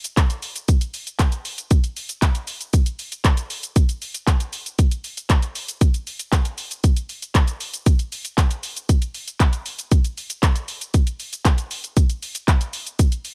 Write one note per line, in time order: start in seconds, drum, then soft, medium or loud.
0.04 closed hi-hat medium
0.04 shaker medium
0.17 kick loud
0.17 clap loud
0.17 closed hi-hat medium
0.17 shaker medium
0.30 closed hi-hat medium
0.30 shaker medium
0.42 open hi-hat medium
0.42 shaker medium
0.56 closed hi-hat medium
0.56 shaker medium
0.68 kick loud
0.68 closed hi-hat medium
0.68 shaker medium
0.81 closed hi-hat medium
0.81 shaker medium
0.94 open hi-hat medium
0.94 shaker soft
1.07 closed hi-hat medium
1.07 shaker medium
1.19 kick loud
1.19 clap loud
1.19 closed hi-hat medium
1.19 shaker medium
1.32 closed hi-hat medium
1.32 shaker medium
1.45 open hi-hat medium
1.45 shaker medium
1.58 closed hi-hat medium
1.58 shaker medium
1.71 kick loud
1.71 closed hi-hat medium
1.71 shaker medium
1.84 closed hi-hat soft
1.84 shaker medium
1.97 open hi-hat medium
1.97 shaker medium
2.09 closed hi-hat medium
2.09 shaker medium
2.22 kick loud
2.22 clap loud
2.22 closed hi-hat medium
2.22 shaker medium
2.35 closed hi-hat medium
2.35 shaker medium
2.47 open hi-hat medium
2.47 shaker medium
2.61 closed hi-hat medium
2.61 shaker medium
2.73 kick loud
2.73 closed hi-hat medium
2.73 shaker medium
2.86 closed hi-hat medium
2.86 shaker medium
2.99 open hi-hat medium
2.99 shaker soft
3.12 closed hi-hat medium
3.12 shaker medium
3.24 kick loud
3.24 clap loud
3.24 closed hi-hat medium
3.24 shaker medium
3.37 closed hi-hat medium
3.37 shaker medium
3.50 open hi-hat medium
3.50 shaker medium
3.63 closed hi-hat medium
3.63 shaker medium
3.76 kick loud
3.76 closed hi-hat medium
3.76 shaker medium
3.89 closed hi-hat medium
3.89 shaker medium
4.02 open hi-hat medium
4.02 shaker medium
4.14 closed hi-hat medium
4.14 shaker medium
4.27 kick loud
4.27 clap loud
4.27 closed hi-hat medium
4.27 shaker medium
4.40 closed hi-hat medium
4.40 shaker medium
4.53 open hi-hat medium
4.53 shaker medium
4.66 closed hi-hat medium
4.66 shaker medium
4.79 kick loud
4.79 closed hi-hat medium
4.79 shaker medium
4.91 closed hi-hat medium
4.91 shaker medium
5.04 open hi-hat medium
5.04 shaker soft
5.17 closed hi-hat medium
5.17 shaker medium
5.30 kick loud
5.30 clap loud
5.30 closed hi-hat medium
5.30 shaker medium
5.42 closed hi-hat medium
5.42 shaker medium
5.55 open hi-hat medium
5.55 shaker medium
5.68 closed hi-hat medium
5.68 shaker medium
5.81 kick loud
5.81 closed hi-hat medium
5.81 shaker medium
5.94 closed hi-hat medium
5.94 shaker medium
6.07 open hi-hat medium
6.07 shaker medium
6.19 closed hi-hat medium
6.19 shaker medium
6.32 kick loud
6.32 clap loud
6.32 closed hi-hat medium
6.32 shaker medium
6.45 closed hi-hat medium
6.45 shaker medium
6.58 open hi-hat medium
6.58 shaker medium
6.71 closed hi-hat medium
6.71 shaker medium
6.84 kick loud
6.84 closed hi-hat medium
6.84 shaker medium
6.97 closed hi-hat medium
6.97 shaker medium
7.09 open hi-hat medium
7.09 shaker medium
7.22 closed hi-hat medium
7.22 shaker medium
7.35 kick loud
7.35 clap loud
7.35 closed hi-hat medium
7.35 shaker medium
7.48 closed hi-hat medium
7.48 shaker medium
7.60 open hi-hat medium
7.60 shaker medium
7.74 closed hi-hat medium
7.74 shaker medium
7.86 kick loud
7.86 closed hi-hat medium
7.86 shaker medium
7.99 closed hi-hat medium
7.99 shaker medium
8.12 open hi-hat medium
8.12 shaker medium
8.25 closed hi-hat medium
8.25 shaker medium
8.38 kick loud
8.38 clap loud
8.38 closed hi-hat medium
8.38 shaker medium
8.51 closed hi-hat medium
8.51 shaker medium
8.63 open hi-hat medium
8.63 shaker medium
8.77 closed hi-hat medium
8.77 shaker medium
8.89 kick loud
8.89 closed hi-hat medium
8.89 shaker medium
9.02 closed hi-hat medium
9.02 shaker medium
9.14 open hi-hat medium
9.14 shaker soft
9.28 closed hi-hat medium
9.28 shaker medium
9.40 kick loud
9.40 clap loud
9.40 closed hi-hat medium
9.40 shaker medium
9.53 closed hi-hat medium
9.53 shaker medium
9.66 open hi-hat medium
9.66 shaker medium
9.79 closed hi-hat medium
9.79 shaker medium
9.91 kick loud
9.91 closed hi-hat medium
9.91 shaker medium
10.05 closed hi-hat medium
10.05 shaker medium
10.18 open hi-hat medium
10.18 shaker medium
10.30 closed hi-hat medium
10.30 shaker medium
10.43 kick loud
10.43 clap loud
10.43 closed hi-hat medium
10.43 shaker medium
10.56 closed hi-hat medium
10.56 shaker medium
10.68 open hi-hat medium
10.68 shaker medium
10.81 closed hi-hat medium
10.81 shaker medium
10.94 kick loud
10.94 closed hi-hat medium
10.94 shaker medium
11.07 closed hi-hat medium
11.07 shaker medium
11.20 open hi-hat medium
11.20 shaker medium
11.33 closed hi-hat medium
11.33 shaker medium
11.45 kick loud
11.45 clap loud
11.45 closed hi-hat medium
11.45 shaker medium
11.58 closed hi-hat medium
11.58 shaker soft
11.71 open hi-hat medium
11.71 shaker medium
11.84 closed hi-hat medium
11.84 shaker medium
11.97 kick loud
11.97 closed hi-hat medium
11.97 shaker medium
12.10 closed hi-hat medium
12.10 shaker medium
12.22 open hi-hat medium
12.22 shaker medium
12.35 closed hi-hat medium
12.35 shaker medium
12.48 kick loud
12.48 clap loud
12.48 closed hi-hat medium
12.48 shaker medium
12.61 closed hi-hat medium
12.61 shaker medium
12.73 open hi-hat medium
12.73 shaker medium
12.87 closed hi-hat medium
12.87 shaker medium
12.99 kick loud
12.99 closed hi-hat medium
12.99 shaker medium
13.12 closed hi-hat medium
13.12 shaker medium
13.25 open hi-hat medium
13.25 shaker soft